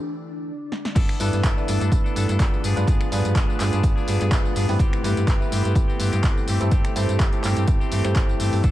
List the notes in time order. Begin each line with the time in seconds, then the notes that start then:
Already playing: E3 A3 D4 G4 D5
0.72 snare
0.85 snare
0.95 G1 E3 A3 B3 D4 A4 B4, kick, closed hi-hat, crash, tambourine
1.09 finger snap, tambourine
1.19 G2 E3 B3 D4 E4 A4 B4, open hi-hat, tambourine
1.33 G2, closed hi-hat, tambourine
1.44 G1 E3 B3 D4 A4, kick, clap, closed hi-hat, tambourine
1.57 D4 E4 A4 B4, tambourine
1.67 G2 E3 B3 D4 A4, open hi-hat, tambourine
1.80 G2 B3 D4 A4, closed hi-hat, tambourine
1.92 G1 D4 E4 A4 B4, kick, closed hi-hat, tambourine
2.04 B3 D4 A4, tambourine
2.15 G2 E3 B3 D4 A4, open hi-hat, tambourine
2.28 G2 B3 D4 A4, closed hi-hat, tambourine
2.39 G1 E3 B3 D4 A4, kick, clap, closed hi-hat, tambourine
2.54 tambourine
2.63 G2 F3 B3 D4 G#4, open hi-hat, tambourine
2.76 G2 D4 F4 G#4 B4, closed hi-hat, tambourine
2.87 G1 F3 B3 D4 G#4, kick, closed hi-hat, tambourine
3.01 finger snap, tambourine
3.11 G2 F3 B3 D4 F4 G#4 B4, open hi-hat, tambourine
3.25 G2, closed hi-hat, tambourine
3.35 G1 F3 D4 G#4, kick, clap, closed hi-hat, tambourine
3.48 D4 F4 G#4 B4, tambourine
3.59 G2 F3 B3 D4 G#4, clap, open hi-hat, tambourine
3.72 G2 B3 D4 G#4, closed hi-hat, tambourine
3.83 G1 G#4, kick, closed hi-hat, tambourine
3.96 B3 D4 G#4, tambourine
4.07 G2 F3 B3 D4 G#4, open hi-hat, tambourine
4.20 G2 B3 D4 G#4, closed hi-hat, tambourine
4.31 G1 F3 B3 D4 G#4, kick, clap, closed hi-hat, tambourine
4.45 tambourine
4.55 G2 F3 B3 D4 G#4, open hi-hat, tambourine
4.68 G2 C4 E4 G4 B4, open hi-hat, tambourine
4.79 G1 E3 B3 C4 G4, kick, closed hi-hat, tambourine
4.93 finger snap, tambourine
5.03 G2 E3 B3 C4 E4 G4 B4, open hi-hat, tambourine
5.17 G2, closed hi-hat, tambourine
5.27 G1 E3 B3 C4 G4, kick, clap, closed hi-hat, tambourine
5.40 E4 G4 B4, tambourine
5.51 G2 E3 B3 C4 G4, open hi-hat, tambourine
5.64 G2 B3 C4 G4, closed hi-hat, tambourine
5.75 G1, kick, closed hi-hat, tambourine
5.88 B3 C4 G4, tambourine
5.99 G2 E3 B3 C4 G4, open hi-hat, tambourine
6.12 G2 B3 C4 G4, closed hi-hat, tambourine
6.23 G1 E3 C4 G4 A4, kick, clap, closed hi-hat, tambourine
6.38 tambourine
6.47 G2 E3 A3 C4 G4, open hi-hat, tambourine
6.60 G2 C4 E4 G4 A4, closed hi-hat, tambourine
6.71 G1 E3 A3 C4 G4, kick, closed hi-hat, tambourine
6.85 finger snap, closed hi-hat, tambourine
6.95 G2 E3 A3 C4 E4 G4 A4, open hi-hat, tambourine
7.09 G2, closed hi-hat, tambourine
7.19 G1 E3 A3 C4 G4, kick, clap, closed hi-hat, tambourine
7.33 C4 E4 G4 A4, closed hi-hat, tambourine
7.43 G2 E3 A3 C4 G4, clap, open hi-hat, tambourine
7.56 G2 A3 C4 G4, closed hi-hat, tambourine
7.68 G1, kick, closed hi-hat, tambourine
7.80 A3 C4 G4, tambourine
7.91 G2 E3 A3 C4 G4, open hi-hat, tambourine
8.04 G2 A3 C4 E4 G4 A4, finger snap, closed hi-hat, tambourine
8.15 G1 E3 A3 C4 E4 G4 A4, kick, clap, closed hi-hat, tambourine
8.29 tambourine
8.39 G2 E3 A3 C4 G4, open hi-hat, tambourine
8.53 G2, open hi-hat, tambourine
8.63 G1 E3 B3 D4 A4 D5, kick, closed hi-hat, tambourine